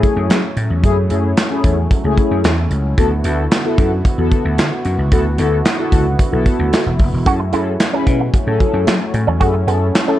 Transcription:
Already playing: analog synth pad F#3 A3 C#4 E4, analog polysynth A3 C#4 E4 G#4
0.03 kick, closed hi-hat
0.16 slap bass F#2
0.30 slap bass F#3, snare, clap, closed hi-hat
0.57 slap bass A2, closed hi-hat
0.70 slap bass E2
0.83 slap bass F#2, analog polysynth A3 C#4 E4 G#4, kick, closed hi-hat
1.10 slap bass F#2, analog polysynth A3 C#4 E4 G#4, closed hi-hat
1.37 snare, clap, closed hi-hat
1.50 analog polysynth A3 C#4 E4 G#4
1.64 slap bass E2, kick, closed hi-hat
1.91 kick, closed hi-hat
2.04 slap bass C#2, analog polysynth A3 C#4 E4 G#4
2.18 kick, closed hi-hat
2.31 slap bass F#2
2.44 slap bass E2, snare, clap, closed hi-hat
2.71 slap bass C#2, closed hi-hat
2.98 slap bass D2, analog synth pad D3 B3 F#4, analog polysynth B3 E4 F#4 A4, kick, closed hi-hat
3.24 slap bass D2, analog polysynth B3 E4 F#4 A4, closed hi-hat
3.52 snare, clap, closed hi-hat
3.65 analog polysynth B3 E4 F#4 A4
3.78 slap bass F#2, kick, closed hi-hat
4.05 kick, closed hi-hat
4.18 slap bass E2, analog polysynth B3 E4 F#4 A4
4.32 kick, closed hi-hat
4.45 slap bass D2
4.58 slap bass D3, snare, clap, closed hi-hat
4.85 slap bass F#2, closed hi-hat
4.99 slap bass C#2
5.11 slap bass D2, analog polysynth B3 E4 F#4 A4, kick, closed hi-hat
5.38 slap bass D2, analog polysynth B3 E4 F#4 A4, closed hi-hat
5.65 snare, clap, closed hi-hat
5.78 analog polysynth B3 E4 F#4 A4
5.92 slap bass C#2, kick, closed hi-hat
6.19 kick, closed hi-hat
6.31 slap bass B1, analog polysynth B3 E4 F#4 A4
6.46 kick, closed hi-hat
6.59 slap bass D2
6.73 snare, clap, closed hi-hat
6.86 slap bass E1
6.99 slap bass F#1, kick, open hi-hat
7.13 slap bass E1
7.25 slap bass F#2, analog synth pad F#3 A3 C#4, analog polysynth C#4 E4 G#4 A4, clean electric guitar F#4, kick, closed hi-hat
7.40 muted clean electric guitar stroke
7.52 slap bass F#2, analog polysynth C#4 E4 G#4 A4, clean electric guitar E4, closed hi-hat
7.80 snare, clap, closed hi-hat
7.93 analog polysynth C#4 E4 G#4 B4, clean electric guitar C#4
8.07 slap bass B2, muted clean electric guitar stroke, kick, closed hi-hat
8.20 clean electric guitar A3
8.34 kick, closed hi-hat
8.46 slap bass A2, analog polysynth C#4 E4 G#4 A4
8.60 clean electric guitar F#3, kick, closed hi-hat
8.73 slap bass F#2
8.87 slap bass F#3, clean electric guitar A3, snare, clap, closed hi-hat
9.14 slap bass A2, muted clean electric guitar stroke, closed hi-hat
9.27 slap bass E2, clean electric guitar C#4
9.40 slap bass F#2, analog polysynth C#4 E4 G#4 A4, clean electric guitar F#4, kick, closed hi-hat
9.54 muted clean electric guitar stroke
9.67 slap bass F#2, clean electric guitar B3, analog polysynth C#4 E4 G#4 A4, closed hi-hat
9.95 snare, clap, closed hi-hat
10.07 analog polysynth C#4 E4 G#4 A4, clean electric guitar C#4

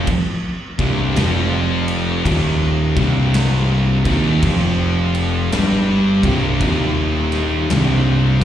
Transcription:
0.07 kick, crash
0.79 grand piano C1, distorted electric guitar C2 C3, kick, crash
1.16 grand piano F1, distorted electric guitar F2 F3, snare, crash
1.88 crash
2.25 grand piano D#1, distorted electric guitar D#2 D#3, kick, crash
2.96 grand piano C1, distorted electric guitar C2 C3, kick, crash
3.34 snare, crash
4.05 grand piano D#1, distorted electric guitar D#2 D#3, kick, crash
4.42 grand piano F1, distorted electric guitar F2 F3, kick, crash
5.15 crash
5.52 grand piano G1, distorted electric guitar G2 G3, snare, crash
6.23 grand piano C1, distorted electric guitar C2 C3, kick, crash
6.61 grand piano D#1, distorted electric guitar D#2 D#3, kick, crash
7.32 snare, crash
7.70 grand piano C1, distorted electric guitar C2 C3, snare, crash
8.41 distorted electric guitar F2

